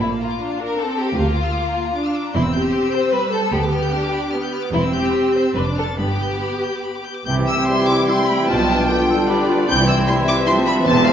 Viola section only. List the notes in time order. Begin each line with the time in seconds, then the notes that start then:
0.00 A#3
0.39 D4
0.78 C4
1.17 A#3
1.57 A#3
1.95 D4
2.35 C4
3.14 G3
3.52 B3
3.93 D4
4.34 B3
4.74 C4
5.56 D4
5.98 B3
7.27 C3 E4
7.37 E3
7.48 G3
7.58 C4
7.68 G3
7.78 E3
7.89 C3
8.00 E3
8.09 G3
8.19 C4
8.29 G3
8.39 E3
8.49 F3 F4
8.59 G3
8.71 B3
8.80 D4
8.90 B3
9.00 G3
9.09 F3
9.19 G3
9.30 B3
9.39 D4
9.49 B3
9.58 G3
9.68 C3 E4
9.79 E3
9.90 G3
9.99 C4
10.10 G3
10.19 E3
10.28 C3
10.38 E3
10.48 G3
10.58 C4
10.68 G3
10.78 E3
10.87 C3 G4
10.98 E3
11.08 G3